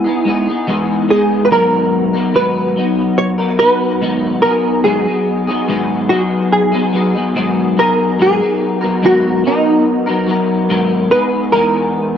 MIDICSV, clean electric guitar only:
0, 0, Header, 1, 2, 480
1, 0, Start_track
1, 0, Key_signature, 5, "minor"
1, 0, Tempo, 835655
1, 866, Time_signature, 4, 2, 24, 8
1, 6993, End_track
2, 0, Start_track
2, 0, Title_t, "Clean electric guitar"
2, 0, Program_c, 0, 27
2, 25, Note_on_c, 0, 68, 45
2, 36, Note_on_c, 0, 63, 43
2, 46, Note_on_c, 0, 59, 39
2, 145, Note_on_c, 0, 56, 58
2, 146, Note_off_c, 0, 68, 0
2, 147, Note_off_c, 0, 59, 0
2, 151, Note_off_c, 0, 63, 0
2, 154, Note_on_c, 0, 59, 54
2, 160, Note_on_c, 0, 63, 57
2, 166, Note_on_c, 0, 68, 61
2, 263, Note_off_c, 0, 68, 0
2, 266, Note_off_c, 0, 56, 0
2, 270, Note_off_c, 0, 59, 0
2, 270, Note_on_c, 0, 68, 48
2, 273, Note_off_c, 0, 63, 0
2, 279, Note_on_c, 0, 63, 47
2, 290, Note_on_c, 0, 59, 39
2, 385, Note_on_c, 0, 52, 81
2, 387, Note_off_c, 0, 59, 0
2, 388, Note_off_c, 0, 68, 0
2, 389, Note_off_c, 0, 63, 0
2, 390, Note_on_c, 0, 56, 81
2, 393, Note_on_c, 0, 59, 82
2, 396, Note_on_c, 0, 63, 84
2, 399, Note_on_c, 0, 68, 90
2, 619, Note_off_c, 0, 56, 0
2, 625, Note_off_c, 0, 52, 0
2, 626, Note_on_c, 0, 56, 58
2, 629, Note_off_c, 0, 59, 0
2, 631, Note_off_c, 0, 63, 0
2, 632, Note_off_c, 0, 68, 0
2, 635, Note_on_c, 0, 59, 60
2, 643, Note_on_c, 0, 63, 63
2, 646, Note_on_c, 0, 68, 63
2, 865, Note_off_c, 0, 56, 0
2, 867, Note_on_c, 0, 44, 72
2, 868, Note_off_c, 0, 59, 0
2, 868, Note_on_c, 0, 51, 68
2, 870, Note_off_c, 0, 63, 0
2, 872, Note_on_c, 0, 54, 79
2, 875, Note_off_c, 0, 68, 0
2, 875, Note_on_c, 0, 59, 80
2, 876, Note_on_c, 0, 63, 74
2, 879, Note_on_c, 0, 70, 74
2, 1218, Note_off_c, 0, 70, 0
2, 1225, Note_off_c, 0, 63, 0
2, 1225, Note_on_c, 0, 70, 47
2, 1226, Note_off_c, 0, 44, 0
2, 1226, Note_off_c, 0, 51, 0
2, 1228, Note_off_c, 0, 54, 0
2, 1230, Note_off_c, 0, 59, 0
2, 1231, Note_on_c, 0, 63, 44
2, 1240, Note_on_c, 0, 59, 47
2, 1243, Note_on_c, 0, 54, 38
2, 1343, Note_off_c, 0, 54, 0
2, 1343, Note_on_c, 0, 44, 72
2, 1345, Note_off_c, 0, 70, 0
2, 1346, Note_off_c, 0, 59, 0
2, 1346, Note_on_c, 0, 51, 79
2, 1348, Note_off_c, 0, 63, 0
2, 1350, Note_on_c, 0, 54, 77
2, 1353, Note_on_c, 0, 59, 70
2, 1354, Note_on_c, 0, 63, 83
2, 1579, Note_off_c, 0, 54, 0
2, 1584, Note_off_c, 0, 44, 0
2, 1585, Note_off_c, 0, 51, 0
2, 1586, Note_on_c, 0, 54, 55
2, 1589, Note_off_c, 0, 59, 0
2, 1589, Note_off_c, 0, 63, 0
2, 1595, Note_on_c, 0, 59, 57
2, 1601, Note_on_c, 0, 63, 56
2, 1941, Note_off_c, 0, 63, 0
2, 1942, Note_on_c, 0, 70, 51
2, 1945, Note_off_c, 0, 54, 0
2, 1947, Note_off_c, 0, 59, 0
2, 1948, Note_on_c, 0, 63, 44
2, 1954, Note_on_c, 0, 59, 50
2, 1959, Note_on_c, 0, 54, 39
2, 2056, Note_off_c, 0, 54, 0
2, 2063, Note_off_c, 0, 70, 0
2, 2063, Note_on_c, 0, 54, 54
2, 2064, Note_off_c, 0, 59, 0
2, 2066, Note_off_c, 0, 63, 0
2, 2071, Note_on_c, 0, 59, 64
2, 2080, Note_on_c, 0, 63, 60
2, 2303, Note_on_c, 0, 44, 65
2, 2304, Note_off_c, 0, 54, 0
2, 2307, Note_off_c, 0, 59, 0
2, 2308, Note_on_c, 0, 51, 75
2, 2310, Note_off_c, 0, 63, 0
2, 2310, Note_on_c, 0, 54, 75
2, 2314, Note_on_c, 0, 59, 77
2, 2317, Note_on_c, 0, 63, 78
2, 2535, Note_off_c, 0, 54, 0
2, 2542, Note_off_c, 0, 59, 0
2, 2542, Note_on_c, 0, 54, 57
2, 2543, Note_off_c, 0, 44, 0
2, 2546, Note_off_c, 0, 51, 0
2, 2546, Note_off_c, 0, 63, 0
2, 2549, Note_on_c, 0, 59, 59
2, 2553, Note_on_c, 0, 63, 56
2, 2562, Note_on_c, 0, 68, 66
2, 2779, Note_off_c, 0, 54, 0
2, 2779, Note_on_c, 0, 44, 68
2, 2781, Note_off_c, 0, 59, 0
2, 2784, Note_off_c, 0, 63, 0
2, 2785, Note_on_c, 0, 51, 64
2, 2786, Note_on_c, 0, 54, 67
2, 2787, Note_off_c, 0, 68, 0
2, 2787, Note_on_c, 0, 59, 73
2, 2790, Note_on_c, 0, 63, 80
2, 2794, Note_on_c, 0, 68, 74
2, 2898, Note_off_c, 0, 68, 0
2, 2901, Note_off_c, 0, 44, 0
2, 2904, Note_off_c, 0, 51, 0
2, 2905, Note_off_c, 0, 54, 0
2, 2905, Note_off_c, 0, 63, 0
2, 2905, Note_on_c, 0, 68, 44
2, 2906, Note_off_c, 0, 59, 0
2, 2912, Note_on_c, 0, 63, 44
2, 2917, Note_on_c, 0, 59, 39
2, 2924, Note_on_c, 0, 54, 37
2, 3137, Note_off_c, 0, 68, 0
2, 3144, Note_on_c, 0, 68, 51
2, 3146, Note_off_c, 0, 63, 0
2, 3151, Note_off_c, 0, 59, 0
2, 3153, Note_on_c, 0, 63, 46
2, 3154, Note_off_c, 0, 54, 0
2, 3157, Note_on_c, 0, 59, 43
2, 3164, Note_on_c, 0, 54, 38
2, 3261, Note_off_c, 0, 54, 0
2, 3264, Note_off_c, 0, 68, 0
2, 3264, Note_on_c, 0, 44, 77
2, 3266, Note_off_c, 0, 59, 0
2, 3267, Note_on_c, 0, 51, 81
2, 3268, Note_off_c, 0, 63, 0
2, 3268, Note_on_c, 0, 54, 74
2, 3273, Note_on_c, 0, 59, 86
2, 3274, Note_on_c, 0, 63, 82
2, 3276, Note_on_c, 0, 68, 88
2, 3492, Note_off_c, 0, 54, 0
2, 3499, Note_on_c, 0, 54, 54
2, 3500, Note_off_c, 0, 59, 0
2, 3504, Note_off_c, 0, 44, 0
2, 3505, Note_off_c, 0, 51, 0
2, 3505, Note_off_c, 0, 63, 0
2, 3507, Note_on_c, 0, 59, 57
2, 3510, Note_off_c, 0, 68, 0
2, 3512, Note_on_c, 0, 63, 60
2, 3519, Note_on_c, 0, 68, 62
2, 3853, Note_off_c, 0, 68, 0
2, 3860, Note_on_c, 0, 68, 47
2, 3861, Note_off_c, 0, 54, 0
2, 3861, Note_off_c, 0, 63, 0
2, 3865, Note_off_c, 0, 59, 0
2, 3868, Note_on_c, 0, 63, 47
2, 3874, Note_on_c, 0, 59, 45
2, 3880, Note_on_c, 0, 54, 39
2, 3973, Note_off_c, 0, 54, 0
2, 3980, Note_on_c, 0, 54, 59
2, 3982, Note_off_c, 0, 68, 0
2, 3983, Note_off_c, 0, 59, 0
2, 3986, Note_off_c, 0, 63, 0
2, 3989, Note_on_c, 0, 59, 58
2, 3994, Note_on_c, 0, 63, 59
2, 3998, Note_on_c, 0, 68, 58
2, 4093, Note_off_c, 0, 68, 0
2, 4100, Note_on_c, 0, 68, 47
2, 4102, Note_off_c, 0, 54, 0
2, 4103, Note_off_c, 0, 63, 0
2, 4107, Note_off_c, 0, 59, 0
2, 4110, Note_on_c, 0, 63, 44
2, 4118, Note_on_c, 0, 59, 41
2, 4121, Note_on_c, 0, 54, 41
2, 4220, Note_on_c, 0, 44, 63
2, 4222, Note_off_c, 0, 54, 0
2, 4222, Note_off_c, 0, 68, 0
2, 4224, Note_off_c, 0, 59, 0
2, 4226, Note_on_c, 0, 51, 67
2, 4227, Note_off_c, 0, 63, 0
2, 4229, Note_on_c, 0, 54, 77
2, 4231, Note_on_c, 0, 59, 65
2, 4232, Note_on_c, 0, 68, 68
2, 4233, Note_on_c, 0, 63, 73
2, 4455, Note_off_c, 0, 54, 0
2, 4461, Note_off_c, 0, 59, 0
2, 4462, Note_off_c, 0, 44, 0
2, 4462, Note_on_c, 0, 54, 62
2, 4465, Note_off_c, 0, 51, 0
2, 4468, Note_off_c, 0, 63, 0
2, 4468, Note_off_c, 0, 68, 0
2, 4468, Note_on_c, 0, 59, 62
2, 4478, Note_on_c, 0, 63, 61
2, 4482, Note_on_c, 0, 68, 76
2, 4701, Note_off_c, 0, 54, 0
2, 4703, Note_on_c, 0, 44, 72
2, 4704, Note_off_c, 0, 59, 0
2, 4706, Note_off_c, 0, 63, 0
2, 4706, Note_on_c, 0, 51, 73
2, 4708, Note_on_c, 0, 54, 74
2, 4711, Note_on_c, 0, 59, 73
2, 4713, Note_off_c, 0, 68, 0
2, 4713, Note_on_c, 0, 63, 83
2, 4716, Note_on_c, 0, 70, 75
2, 4817, Note_off_c, 0, 70, 0
2, 4823, Note_off_c, 0, 44, 0
2, 4824, Note_off_c, 0, 63, 0
2, 4824, Note_on_c, 0, 70, 43
2, 4825, Note_off_c, 0, 51, 0
2, 4826, Note_off_c, 0, 54, 0
2, 4827, Note_off_c, 0, 59, 0
2, 4831, Note_on_c, 0, 63, 36
2, 4837, Note_on_c, 0, 59, 37
2, 4843, Note_on_c, 0, 54, 36
2, 5054, Note_off_c, 0, 70, 0
2, 5061, Note_on_c, 0, 70, 54
2, 5063, Note_off_c, 0, 63, 0
2, 5070, Note_on_c, 0, 63, 46
2, 5071, Note_off_c, 0, 59, 0
2, 5074, Note_off_c, 0, 54, 0
2, 5078, Note_on_c, 0, 59, 42
2, 5082, Note_on_c, 0, 54, 43
2, 5181, Note_off_c, 0, 54, 0
2, 5182, Note_off_c, 0, 59, 0
2, 5182, Note_on_c, 0, 44, 74
2, 5183, Note_off_c, 0, 70, 0
2, 5185, Note_on_c, 0, 51, 68
2, 5187, Note_off_c, 0, 63, 0
2, 5188, Note_on_c, 0, 54, 74
2, 5189, Note_on_c, 0, 59, 86
2, 5193, Note_on_c, 0, 63, 84
2, 5196, Note_on_c, 0, 70, 84
2, 5415, Note_off_c, 0, 54, 0
2, 5422, Note_on_c, 0, 54, 51
2, 5423, Note_off_c, 0, 44, 0
2, 5424, Note_off_c, 0, 59, 0
2, 5425, Note_off_c, 0, 51, 0
2, 5429, Note_off_c, 0, 63, 0
2, 5430, Note_off_c, 0, 70, 0
2, 5431, Note_on_c, 0, 59, 54
2, 5436, Note_on_c, 0, 63, 56
2, 5445, Note_on_c, 0, 70, 64
2, 5772, Note_off_c, 0, 70, 0
2, 5778, Note_off_c, 0, 63, 0
2, 5779, Note_on_c, 0, 70, 53
2, 5784, Note_off_c, 0, 54, 0
2, 5785, Note_on_c, 0, 63, 45
2, 5788, Note_off_c, 0, 59, 0
2, 5794, Note_on_c, 0, 59, 44
2, 5798, Note_on_c, 0, 54, 37
2, 5890, Note_off_c, 0, 54, 0
2, 5897, Note_on_c, 0, 54, 54
2, 5900, Note_off_c, 0, 59, 0
2, 5902, Note_off_c, 0, 70, 0
2, 5905, Note_off_c, 0, 63, 0
2, 5907, Note_on_c, 0, 59, 54
2, 5911, Note_on_c, 0, 63, 57
2, 5918, Note_on_c, 0, 70, 65
2, 6140, Note_off_c, 0, 54, 0
2, 6142, Note_off_c, 0, 59, 0
2, 6142, Note_on_c, 0, 44, 73
2, 6145, Note_on_c, 0, 51, 81
2, 6146, Note_off_c, 0, 63, 0
2, 6146, Note_on_c, 0, 54, 83
2, 6148, Note_off_c, 0, 70, 0
2, 6149, Note_on_c, 0, 59, 84
2, 6153, Note_on_c, 0, 63, 82
2, 6155, Note_on_c, 0, 70, 92
2, 6379, Note_off_c, 0, 54, 0
2, 6381, Note_off_c, 0, 59, 0
2, 6381, Note_on_c, 0, 56, 54
2, 6384, Note_off_c, 0, 44, 0
2, 6385, Note_off_c, 0, 51, 0
2, 6388, Note_off_c, 0, 63, 0
2, 6388, Note_on_c, 0, 59, 51
2, 6390, Note_off_c, 0, 70, 0
2, 6395, Note_on_c, 0, 63, 62
2, 6400, Note_on_c, 0, 68, 66
2, 6622, Note_off_c, 0, 56, 0
2, 6622, Note_on_c, 0, 52, 72
2, 6624, Note_off_c, 0, 59, 0
2, 6628, Note_off_c, 0, 63, 0
2, 6629, Note_on_c, 0, 56, 76
2, 6631, Note_off_c, 0, 68, 0
2, 6631, Note_on_c, 0, 59, 69
2, 6635, Note_on_c, 0, 63, 75
2, 6638, Note_on_c, 0, 68, 79
2, 6979, Note_off_c, 0, 68, 0
2, 6985, Note_off_c, 0, 52, 0
2, 6988, Note_off_c, 0, 56, 0
2, 6988, Note_off_c, 0, 63, 0
2, 6989, Note_off_c, 0, 59, 0
2, 6993, End_track
0, 0, End_of_file